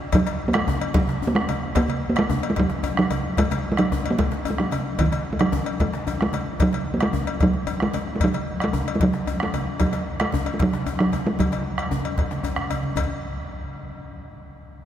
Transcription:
0.12 F#3, bombo rim, bombo low, cowbell, djembe slap, low conga, djembe bass
0.27 cowbell, djembe slap
0.48 A#3
0.53 G#3, bombo rim, cowbell, high conga
0.68 djembe tone, high conga, djembe bass
0.81 cowbell
0.94 F#3, bombo rim, bombo low, cowbell, djembe slap, low conga
1.08 bombo rim, djembe slap, high conga
1.22 bombo rim, high conga, djembe bass
1.27 A#3
1.35 G#3, bombo rim
1.49 cowbell, djembe tone, high conga
1.63 bombo rim
1.75 A#3, bombo rim, bombo low, cowbell, djembe slap, low conga, djembe bass
1.88 cowbell, high conga
2.10 A#3
2.16 G#3, bombo rim, cowbell, high conga
2.29 djembe tone, high conga, djembe bass
2.43 cowbell
2.50 G#3
2.56 F#3, bombo rim, bombo low, cowbell, djembe slap, low conga
2.70 bombo rim, djembe slap, high conga
2.83 bombo rim, cowbell, high conga, djembe bass
2.97 F#3, bombo rim
3.11 cowbell, djembe tone, high conga
3.24 bombo rim
3.37 G#3, bombo rim, bombo low, cowbell, djembe slap, low conga, djembe bass
3.51 cowbell, djembe slap, high conga
3.72 G#3
3.77 F#3, bombo rim, cowbell, high conga
3.92 djembe tone, high conga, djembe bass
4.06 cowbell
4.11 A#3
4.18 G#3, bombo rim, bombo low, cowbell, djembe slap, low conga
4.31 bombo rim, djembe slap, high conga
4.45 bombo rim, cowbell, high conga, djembe bass
4.50 G#3
4.58 F#3, bombo rim
4.71 cowbell, high conga, djembe tone
4.98 D#3, bombo low, cowbell, djembe slap, djembe bass, low conga
5.12 cowbell, djembe slap, high conga
5.25 bombo rim, djembe slap
5.33 G#3
5.39 F#3, bombo rim, cowbell
5.52 bombo rim, djembe tone, high conga, djembe bass
5.66 cowbell
5.80 G#3, bombo low, cowbell, low conga
5.93 djembe slap, high conga
6.07 bombo rim, cowbell, djembe bass
6.21 G#3, bombo rim
6.33 bombo rim, cowbell, djembe slap, high conga, djembe tone
6.46 high conga
6.59 F#3, bombo rim, bombo low, cowbell, djembe slap, djembe bass, low conga
6.73 cowbell, djembe slap, high conga
6.94 A#3
7.00 G#3, bombo rim, cowbell, high conga
7.13 high conga, djembe tone, djembe bass
7.27 cowbell
7.40 F#3, bombo rim, bombo low, cowbell, djembe slap, low conga
7.53 bombo rim, high conga
7.67 bombo rim, cowbell, high conga, djembe bass
7.80 G#3, bombo rim
7.94 cowbell, djembe tone, high conga
8.07 bombo rim
8.16 G#3
8.20 F#3, bombo rim, bombo low, cowbell, djembe slap, djembe bass, low conga
8.34 cowbell, high conga
8.60 G#3, bombo rim, cowbell, high conga
8.73 djembe tone, high conga, djembe bass
8.88 cowbell
8.96 G#3
9.00 F#3, bombo rim, bombo low, cowbell, djembe slap, low conga
9.13 bombo rim, djembe slap, high conga
9.26 bombo rim, cowbell, high conga, djembe bass
9.40 G#3, bombo rim
9.54 cowbell, djembe tone, high conga
9.67 bombo rim
9.80 F#3, bombo rim, bombo low, cowbell, djembe slap, djembe bass, low conga
9.93 cowbell, djembe slap, high conga
10.20 G#3, bombo rim, cowbell, high conga
10.32 high conga, djembe tone, djembe bass
10.46 cowbell
10.54 G#3
10.59 F#3, bombo rim, bombo low, cowbell, djembe slap, low conga
10.73 bombo rim, djembe slap, high conga
10.86 bombo rim, cowbell, high conga, djembe bass
10.99 F#3, bombo rim
11.12 cowbell, high conga, djembe tone
11.26 G#3, bombo rim
11.39 F#3, bombo rim, bombo low, cowbell, djembe slap, low conga, djembe bass
11.52 cowbell, djembe slap, high conga
11.78 bombo rim, cowbell, djembe slap
11.91 djembe tone, high conga, djembe bass
12.05 cowbell, djembe slap, high conga
12.18 bombo low, cowbell, low conga
12.31 djembe slap, high conga
12.43 bombo rim, cowbell, djembe bass
12.56 bombo rim, djembe slap, low conga
12.70 cowbell, djembe tone, high conga
12.83 djembe slap, high conga
12.96 bombo low, cowbell, djembe bass, low conga

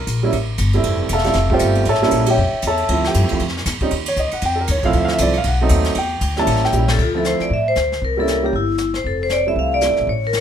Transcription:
Already playing: A#4
0.07 A#1, kick, hi-hat pedal, ride
0.23 G3 A#3 C#4 E4
0.32 A1, kick, ride
0.58 G1, kick, hi-hat pedal, ride
0.73 G3 A3 C4 E4, ride
0.83 F1, kick, ride
1.09 E1, kick, hi-hat pedal, ride
1.13 A4 E5 F5 A5
1.18 snare
1.24 G3 A3 C4 E4, snare, ride
1.33 F1, kick, snare, ride
1.50 G3 A3 C4 F4 E5 G5, kick
1.54 G4 C5
1.59 G1, kick, hi-hat pedal, ride
1.75 ride
1.85 A1, kick, ride
1.89 A4 C#5 E5 A5
1.95 snare
2.02 G3 A#3 C#4 E4, snare
2.11 A#1, kick, hi-hat pedal, ride
2.26 G3 A#3 C#4 G4 C#5, ride
2.30 E5 G5
2.37 F2, kick
2.53 muted upright bass stroke
2.62 E2, kick, hi-hat pedal, ride
2.67 A4 C#5 E5 A5
2.77 ride
2.88 D2 F3 A3 C4 E4, kick, ride
3.04 G4 G5, snare
3.14 G2, kick, hi-hat pedal, ride
3.24 F2
3.29 D2 F3 A3 C4 E4, ride
3.39 F2, kick, ride
3.48 snare
3.57 snare
3.65 E2, kick, snare, hi-hat pedal, ride
3.80 G3 C4 C#4 D#4, muted upright bass stroke, kick, ride
3.91 D#2, kick, ride
4.06 C#5, ride
4.16 C#2 D#5, kick, hi-hat pedal
4.31 F#5, muted upright bass stroke, ride
4.41 F2 G5, kick, ride
4.61 A#4
4.67 D#2 C#5, kick, hi-hat pedal, ride
4.77 C#2
4.83 A#1 F3 A3 C4 E4 F5, kick, ride
4.93 D2, kick, ride
4.98 E5
5.05 F5, snare
5.13 E5
5.18 C2 F3 A3 C4 E4 D5, kick, hi-hat pedal, ride
5.33 ride
5.38 F5
5.44 B1 F#5, kick, ride
5.61 F#3 A3 C4 D#4
5.69 D#2, kick, hi-hat pedal, ride
5.84 snare, ride
5.95 E2 G5, kick, ride
6.21 D2, kick, hi-hat pedal, ride
6.37 G3 A#3 C#4 E4 A5, snare
6.47 A1, kick, ride
6.56 snare
6.65 G5, snare
6.72 A#1 G3 A#3 C#4 E4, hi-hat pedal
6.88 A4, snare
6.98 D2 F4, brush sweep, kick, crash
7.14 F3 A3 C4 E4 A4
7.24 C5, snare, hi-hat pedal
7.40 D5, muted upright bass stroke, snare
7.50 A2 E5, brush sweep, kick
7.68 C5
7.75 D2, snare, hi-hat pedal
7.92 snare
8.02 C2 A#4, brush sweep, kick
8.17 G3 A#3 C#4 E4 A4
8.27 A#4, snare, hi-hat pedal
8.43 G3 A#3 C#4 G4
8.53 G1 E4, brush sweep, kick
8.78 snare, hi-hat pedal
8.94 C5, snare
9.04 F1 A4, brush sweep, kick
9.23 C5
9.29 C#5 D5, snare, hi-hat pedal
9.47 G3 A3 C4 E4 E5
9.56 C2 F5, brush sweep, kick
9.74 D5
9.81 G3 A3 C4 E4, snare, hi-hat pedal
9.91 E2
9.96 A#1, snare
10.07 A1 C#5, brush sweep, kick
10.27 A#4
10.33 snare, hi-hat pedal
10.37 C#5

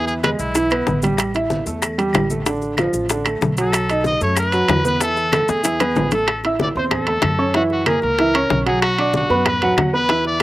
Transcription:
Already playing: E2 E3 E4
0.07 G#4, high bongo, high conga, maracas
0.23 G#3 G#4 B4, high bongo, high conga, high timbale, claves, maracas
0.39 B1 E4, high bongo, high conga, maracas
0.55 E3 E4, high bongo, high conga, high timbale, maracas
0.70 B3 B4, high bongo, high conga, high timbale, claves, maracas
0.87 A1, high bongo, low bongo, high conga, maracas
1.02 G3 G4, high conga, high timbale, maracas
1.17 high bongo, high timbale, claves, maracas
1.34 E4 E5, high bongo, high conga, high timbale, maracas
1.50 high bongo, high conga, maracas
1.66 E2 A3 A4, high bongo, maracas
1.82 high bongo, high conga, high timbale, claves, maracas
1.98 G3 G4, high bongo, high conga, high timbale, maracas
2.13 A1, high bongo, low bongo, high conga, high timbale, low timbale, claves, maracas
2.30 A3 A4, high conga, maracas
2.46 D3 D4, high bongo, high timbale, maracas
2.62 high bongo, high conga, maracas
2.77 F3 F4, high bongo, high conga, high timbale, claves, maracas
2.93 A1, high bongo, high conga, maracas
3.09 D3 D4, high bongo, high conga, high timbale, maracas
3.25 A3 A4, high bongo, high conga, high timbale, claves, maracas
3.41 B1, high bongo, low bongo, high conga, maracas
3.57 F#3 F#4 A4, high timbale, maracas
3.72 high bongo, high conga, high timbale, claves, maracas
3.89 D#4 D#5, high bongo, high conga, high timbale, maracas
4.04 D#5, high bongo, high conga, maracas
4.21 F#2 A3 A4 C#5, high bongo, maracas
4.36 B4, high bongo, high conga, high timbale, claves, maracas
4.52 F#3 F#4, high bongo, high conga, high timbale, maracas
4.68 E2, high bongo, low bongo, high conga, high timbale, low timbale, claves, maracas
4.84 B3 B4, high conga, maracas
5.00 E3 E4 A4, high bongo, high conga, high timbale, maracas
5.17 high bongo, high conga, maracas
5.32 A3 A4, high bongo, high conga, high timbale, claves, maracas
5.48 E2 G#4, high bongo, high conga, maracas
5.63 E3 E4, low bongo, high conga, high timbale, maracas
5.80 B3 B4, low bongo, high conga, high timbale, claves, maracas
5.96 A1, low bongo, high conga, low timbale, maracas
6.11 A3 A4, low bongo, high timbale, maracas
6.27 high bongo, high conga, high timbale, claves
6.44 E4 E5 E6, high bongo, high conga, high timbale
6.59 D5, high bongo, high conga
6.75 E2 C4 C5 C6, high bongo
6.91 A4, high bongo, high conga, low conga, high timbale, claves
7.07 A3 A4 A5, high bongo, high conga, high timbale
7.22 F#2, high bongo, low bongo, high conga, high timbale, claves
7.38 C#4 C#5 C#6
7.54 E3 E4 F#4 E5, high bongo, high conga, high timbale
7.70 F#4, high bongo, high conga
7.86 A#3 G#4 A#4 A#5, high bongo, high conga, high timbale, claves
8.02 C#2 A#4, high bongo, high conga
8.19 E3 E4 E5, high bongo, high timbale
8.34 C#4 C#5 C#6, high bongo, high conga, high timbale, claves
8.50 B1, high bongo, low bongo, high conga
8.66 F#3 F#4 G#4 F#5, high timbale
8.82 F#4, high bongo, high conga, high timbale, claves
8.98 D4 D5 D6, high bongo, high conga, high timbale
9.13 F#4, high bongo, high conga
9.30 F#2 B3 B4 B5, high bongo
9.45 B4, high bongo, high conga, low conga, high timbale, claves
9.62 F#3 F#4 F#5, high bongo, high conga, low conga, high timbale
9.77 E2, high bongo, low bongo, high conga, high timbale, claves
9.93 B3 B4 B5
10.09 E3 E4 E5, high bongo, high conga, high timbale
10.25 D5, high bongo, high conga

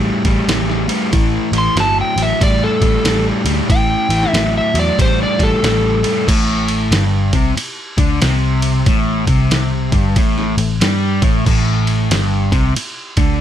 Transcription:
Already playing: A2 G3
0.25 A1 A2 G3, kick, ride
0.48 A1 A2 G3, snare, ride
0.70 snare
0.88 A2 G3, ride
1.13 A1 A2 E3, kick, ride
1.52 A1 A2 E3, ride
1.58 C6
1.76 G1 A2 F#3, snare, ride
1.80 A5
2.01 G5
2.16 A1 A2 F#3, ride
2.22 E5
2.41 A1 A2 G3 D5, kick, ride
2.64 A4
2.81 A1 A2 G3, kick, ride
3.04 A1 A2 G3, snare, ride
3.45 D2 A2 G3, ride
3.69 A1 A2 E3 G5, kick, ride
4.09 A1 A2 E3, ride
4.23 snare
4.30 A1 A2 E5
4.34 F#3, snare, ride
4.58 E5
4.74 E2 A2 F#3, ride
4.79 D5
4.98 A1 A2 G3 C5, kick, ride
5.23 D5
5.38 A1 A2 G3, kick, ride
5.43 A4
5.62 A1 A2 G3, snare, ride
6.03 A2 G3, ride
6.27 A1 A2, kick, crash, ride
6.68 ride
6.91 G1 G2, snare, ride
7.33 C2 C3, kick, ride
7.57 muted overdriven electric guitar stroke, ride
7.97 D2 D3, kick, ride
8.21 C2 C3, snare, ride
8.62 ride
8.86 A1 A2, kick, ride
9.27 C2 C3, kick, ride
9.51 snare, ride
9.92 G1 G2, kick, ride
10.16 A1 A2, kick, ride
10.38 snare
10.58 A1 A2, ride
10.81 G2 G3, snare, ride
11.22 A1 A2, kick, ride
11.46 A1 A2, kick, crash
11.87 ride
12.11 G1 G2, snare, ride
12.52 C2 C3, kick, ride
12.76 muted picked electric bass stroke, muted overdriven electric guitar stroke, ride
13.17 D2 D3, kick, ride

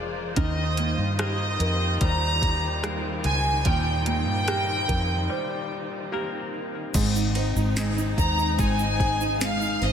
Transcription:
Already playing: F1 F2 F3 G#3 D4 F4 G#4 A#4 C5 D5
0.36 D#2 D#3 G3 D#4 A#4 D#5, kick, closed hi-hat
0.77 A#3, closed hi-hat
0.98 G2
1.19 A#3 C4 G4 A#4 D#5, cross-stick, closed hi-hat
1.60 F2 A#4, closed hi-hat
2.01 D#2 G3 C5 A#5, kick, closed hi-hat
2.42 kick, closed hi-hat
2.84 G3 A#3 C4 A#4, cross-stick, closed hi-hat
3.24 C#2 G#5, cross-stick, closed hi-hat
3.65 D#2 A#2 D#3 A#4 G5, kick, closed hi-hat
4.06 A#3 G5, closed hi-hat
4.27 G2
4.47 A#3 C4 G4 A#4, cross-stick, closed hi-hat
4.88 F2 A#4, kick, closed hi-hat
5.29 G3 C5
6.12 A#3 C4 G4 A#4
6.94 G#1 G#2 G#3 C4 D#4, kick, crash, ride, shaker
7.15 D#4, shaker
7.35 D#4 C5, ride
7.56 G#1 D#4, shaker
7.76 G#3 C4 D#4 G#4, snare, ride, shaker
7.97 D#4, shaker
8.18 D#2 C5 A#5, kick, ride, shaker
8.38 D#4, shaker
8.59 G#1 G#3 C4 D#4 G#4 G#5, kick, ride, shaker
8.79 D#4, shaker
9.00 G#4 C5, kick, ride
9.20 D#4, shaker
9.40 G#3 F5, snare, ride, shaker
9.61 D#4, shaker
9.82 G#1 C5 D#5, snare, ride

